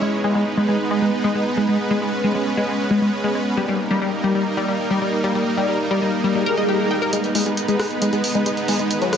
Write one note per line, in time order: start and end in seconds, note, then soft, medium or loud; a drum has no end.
0.01 0.17 G#3 medium
0.01 0.11 G#3 medium
0.01 0.17 B3 medium
0.01 0.17 D#4 medium
0.01 0.17 B4 medium
0.24 0.39 G#3 medium
0.24 0.33 G#3 loud
0.24 0.39 B3 medium
0.24 0.40 D#4 medium
0.24 0.39 B4 medium
0.35 0.44 G#3 medium
0.46 0.54 G#3 medium
0.46 0.54 B3 medium
0.46 0.54 D#4 medium
0.46 0.54 B4 medium
0.57 0.66 G#3 loud
0.57 0.73 G#3 medium
0.57 0.73 B3 medium
0.57 0.73 D#4 medium
0.57 0.73 B4 medium
0.68 0.77 G#3 medium
0.80 0.87 G#3 medium
0.80 0.87 B3 medium
0.80 0.87 D#4 medium
0.80 0.87 B4 medium
0.91 1.00 G#3 medium
0.91 1.06 G#3 medium
0.91 1.06 B3 medium
0.91 1.06 D#4 medium
0.91 1.06 B4 medium
1.02 1.11 G#3 medium
1.13 1.28 G#3 medium
1.13 1.28 B3 medium
1.13 1.28 D#4 medium
1.13 1.28 B4 medium
1.24 1.33 G#3 loud
1.35 1.43 G#3 medium
1.35 1.44 G#3 medium
1.35 1.43 B3 medium
1.35 1.43 D#4 medium
1.35 1.43 B4 medium
1.46 1.62 G#3 medium
1.46 1.62 B3 medium
1.46 1.62 D#4 medium
1.46 1.62 B4 medium
1.57 1.66 G#3 medium
1.68 1.76 G#3 medium
1.68 1.77 G#3 medium
1.68 1.76 B3 medium
1.68 1.76 D#4 medium
1.68 1.76 B4 medium
1.79 1.95 G#3 medium
1.79 1.95 B3 medium
1.79 1.95 C#4 medium
1.79 1.95 B4 medium
1.91 1.99 G#3 loud
2.01 2.17 G#3 medium
2.01 2.11 G#3 medium
2.01 2.17 B3 medium
2.01 2.17 C#4 medium
2.01 2.17 B4 medium
2.23 2.31 G#3 medium
2.23 2.33 G#3 medium
2.23 2.31 B3 medium
2.23 2.31 C#4 medium
2.23 2.31 B4 medium
2.35 2.50 G#3 medium
2.35 2.44 G#3 medium
2.35 2.50 B3 medium
2.35 2.50 C#4 medium
2.35 2.50 B4 medium
2.57 2.65 G#3 medium
2.57 2.66 G#3 medium
2.57 2.65 B3 medium
2.57 2.65 C#4 medium
2.57 2.65 B4 medium
2.68 2.84 G#3 medium
2.68 2.77 G#3 medium
2.68 2.84 B3 medium
2.68 2.84 C#4 medium
2.68 2.84 B4 medium
2.90 3.06 G#3 medium
2.90 2.99 G#3 loud
2.90 3.06 B3 medium
2.90 3.06 C#4 medium
2.90 3.06 B4 medium
3.02 3.11 G#3 medium
3.13 3.21 G#3 medium
3.13 3.21 B3 medium
3.13 3.21 C#4 medium
3.13 3.21 B4 medium
3.24 3.33 G#3 loud
3.24 3.40 G#3 medium
3.24 3.40 B3 medium
3.24 3.40 C#4 medium
3.24 3.40 B4 medium
3.35 3.44 G#3 medium
3.46 3.54 G#3 medium
3.46 3.54 B3 medium
3.46 3.54 C#4 medium
3.46 3.54 B4 medium
3.57 3.66 G3 loud
3.57 3.73 G3 medium
3.57 3.73 A#3 medium
3.57 3.73 D#4 medium
3.57 3.73 A#4 medium
3.68 3.77 G3 medium
3.80 3.95 G3 medium
3.80 3.95 A#3 medium
3.80 3.95 D#4 medium
3.80 3.95 A#4 medium
3.91 3.99 G3 loud
4.02 4.11 G3 medium
4.02 4.10 G3 medium
4.02 4.10 A#3 medium
4.02 4.10 D#4 medium
4.02 4.10 A#4 medium
4.13 4.29 G3 medium
4.13 4.29 A#3 medium
4.13 4.29 D#4 medium
4.13 4.29 A#4 medium
4.24 4.33 G3 loud
4.35 4.44 G3 medium
4.35 4.43 G3 medium
4.35 4.43 A#3 medium
4.35 4.43 D#4 medium
4.35 4.43 A#4 medium
4.46 4.62 G3 medium
4.46 4.62 A#3 medium
4.46 4.62 D#4 medium
4.46 4.62 A#4 medium
4.57 4.66 G3 loud
4.68 4.77 G3 medium
4.68 4.84 G3 medium
4.68 4.84 A#3 medium
4.68 4.84 D#4 medium
4.68 4.84 A#4 medium
4.91 4.99 G3 medium
4.91 4.99 A#3 medium
4.91 4.99 D#4 medium
4.91 4.99 A#4 medium
5.02 5.11 G3 medium
5.02 5.18 G3 medium
5.02 5.18 A#3 medium
5.02 5.18 D#4 medium
5.02 5.17 A#4 medium
5.24 5.33 G3 loud
5.24 5.32 G3 medium
5.24 5.32 A#3 medium
5.24 5.32 D#4 medium
5.24 5.32 A#4 medium
5.35 5.44 G3 medium
5.35 5.51 G3 medium
5.35 5.51 A#3 medium
5.35 5.51 D#4 medium
5.35 5.51 A#4 medium
5.57 5.66 G3 loud
5.57 5.73 G3 medium
5.57 5.73 A#3 medium
5.57 5.73 D#4 medium
5.57 5.73 A#4 medium
5.69 5.77 G3 medium
5.80 5.88 G3 medium
5.80 5.88 A#3 medium
5.80 5.88 D#4 medium
5.80 5.88 A#4 medium
5.91 5.99 G3 loud
5.91 6.07 G3 medium
5.91 6.07 A#3 medium
5.91 6.06 D#4 medium
5.91 6.07 A#4 medium
6.02 6.11 G3 medium
6.13 6.21 G3 medium
6.13 6.21 A#3 medium
6.13 6.21 D#4 medium
6.13 6.21 A#4 medium
6.24 6.33 G3 medium
6.24 6.40 G3 medium
6.24 6.40 A#3 medium
6.24 6.40 D#4 medium
6.24 6.40 A#4 medium
6.24 swell medium
6.35 6.44 G3 medium
6.46 6.62 G3 medium
6.46 6.62 A#3 medium
6.46 6.62 D#4 medium
6.46 6.55 A#4 loud
6.46 6.62 A#4 medium
6.57 6.63 D#5 medium
6.68 6.76 G3 medium
6.68 6.76 A#3 medium
6.68 6.76 D#4 medium
6.68 6.77 G4 medium
6.68 6.76 A#4 medium
6.79 6.95 G3 medium
6.79 6.95 A#3 medium
6.79 6.95 D#4 medium
6.79 6.95 A#4 medium
6.91 6.97 G5 medium
7.02 7.10 G3 medium
7.02 7.10 A#3 medium
7.02 7.09 D#4 medium
7.02 7.10 A#4 medium
7.02 7.11 A#4 loud
7.13 7.28 G#3 medium
7.13 7.22 G#3 medium
7.13 7.28 B3 medium
7.13 7.28 D#4 medium
7.13 7.28 B4 medium
7.13 closed hi-hat medium
7.13 riser medium
7.24 closed hi-hat soft
7.35 7.50 G#3 medium
7.35 7.44 G#3 loud
7.35 7.50 B3 medium
7.35 7.50 D#4 medium
7.35 7.50 B4 medium
7.35 open hi-hat loud
7.46 7.55 G#3 medium
7.46 closed hi-hat soft
7.57 7.65 G#3 medium
7.57 7.65 B3 medium
7.57 7.65 D#4 medium
7.57 7.65 B4 medium
7.57 closed hi-hat medium
7.68 7.84 G#3 medium
7.68 7.77 G#3 loud
7.68 7.84 B3 medium
7.68 7.84 D#4 medium
7.68 7.84 B4 medium
7.68 closed hi-hat soft
7.79 7.88 G#3 medium
7.79 cross-stick medium
7.79 open hi-hat medium
7.90 7.98 G#3 medium
7.90 7.98 B3 medium
7.90 7.98 D#4 medium
7.90 7.98 B4 medium
7.90 closed hi-hat soft
8.02 8.17 G#3 medium
8.02 8.11 G#3 loud
8.02 8.17 B3 medium
8.02 8.17 D#4 medium
8.02 8.17 B4 medium
8.02 closed hi-hat loud
8.13 8.22 G#3 medium
8.13 closed hi-hat soft
8.24 8.39 G#3 medium
8.24 8.39 B3 medium
8.24 8.39 D#4 medium
8.24 8.39 B4 medium
8.24 open hi-hat loud
8.35 8.44 G#3 loud
8.35 closed hi-hat soft
8.46 8.54 G#3 medium
8.46 8.55 G#3 medium
8.46 8.54 B3 medium
8.46 8.54 D#4 medium
8.46 8.54 B4 medium
8.46 closed hi-hat medium
8.57 8.73 G#3 medium
8.57 8.73 B3 medium
8.57 8.73 D#4 medium
8.57 8.73 B4 medium
8.57 closed hi-hat soft
8.68 8.77 G#3 loud
8.68 open hi-hat medium
8.79 8.87 G#3 medium
8.79 8.88 G#3 medium
8.79 8.87 B3 medium
8.79 8.87 D#4 medium
8.79 8.87 B4 medium
8.79 closed hi-hat soft
8.91 9.06 G#3 medium
8.91 9.06 E4 medium
8.91 9.06 F#4 medium
8.91 9.06 B4 medium
8.91 closed hi-hat medium
9.02 9.11 F#3 loud
9.02 closed hi-hat soft
9.13 9.17 F#3 medium
9.13 9.17 G#3 medium
9.13 9.17 E4 medium
9.13 9.17 F#4 medium
9.13 9.17 B4 medium
9.13 cross-stick medium
9.13 open hi-hat loud